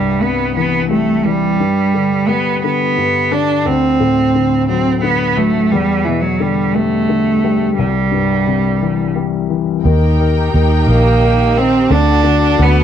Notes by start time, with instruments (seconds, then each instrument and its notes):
Already playing: upright piano C2 G2, cello G3
0.22 upright piano C3, cello B3
0.55 upright piano E3, cello B3
0.90 upright piano G3, cello A3
1.25 upright piano E3, cello G3
1.60 upright piano G2
1.94 upright piano D3
2.28 upright piano G3, cello B3
2.63 upright piano D3, cello B3
2.97 upright piano G2
3.32 upright piano D3, cello D4
3.61 cello D4
3.66 upright piano D2, cello C4
4.00 upright piano A2
4.35 upright piano D3
4.68 upright piano F#3, cello C4
4.98 cello B3 C4
5.03 upright piano D3
5.37 upright piano F#3, cello A3
5.71 upright piano E2, cello G3
6.04 upright piano B2, cello E3
6.21 cello F#3
6.40 upright piano D3, cello G3
6.74 upright piano G3, cello A3
7.09 upright piano D3
7.44 upright piano G3
7.78 upright piano C2, cello G3
8.12 upright piano G2
8.47 upright piano C3
8.82 upright piano E3
9.16 upright piano G3
9.50 upright piano E3
9.84 fingered electric bass D#2, upright piano D#3, string section D#4 G4 A#4 G5
10.20 upright piano D#3
10.54 fingered electric bass D#2, upright piano D#3
10.87 fingered electric bass A#1, upright piano D#3, cello A#3
11.22 upright piano D#3
11.56 upright piano D#3, cello C4
11.90 fingered electric bass D2, upright piano D3, cello D4, string section D4 F#4 A4 F#5
12.24 upright piano D3
12.59 fingered electric bass D2, upright piano D3, cello B3